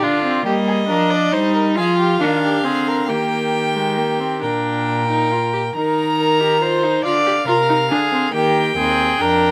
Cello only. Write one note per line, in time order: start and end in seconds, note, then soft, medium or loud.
0.03 0.45 D3 medium
0.46 0.91 G3 medium
0.89 1.32 F3 medium
1.33 1.79 G3 medium
1.77 2.20 F3 medium
2.20 2.64 D#3 medium
2.64 3.10 D3 medium
3.09 4.44 D#3 medium
4.43 5.75 A#2 medium
5.76 7.01 D#3 medium
7.05 7.47 D3 medium
7.48 7.92 C3 medium
7.91 8.33 D3 medium
8.34 8.76 D#3 medium
8.77 9.20 D#2 medium
9.21 9.51 F2 medium